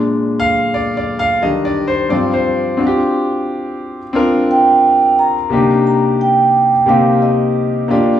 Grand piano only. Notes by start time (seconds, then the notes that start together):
Already playing: A#2 G#3 D4
0.40 F5
0.74 D5
0.97 D5
1.19 F5
1.42 D#3 G3 D4 D#5
1.65 D5
1.88 C5
2.09 G2 F3 C4 D5
2.34 C5
2.77 C4 D4 F4 F#4
2.87 G4
4.13 C4 D4 F4 A#4
5.50 C3 A#3 D4 D#4 G4
6.86 C3 A#3 C4 D#4 G4
7.88 A#3 D4 F4 G4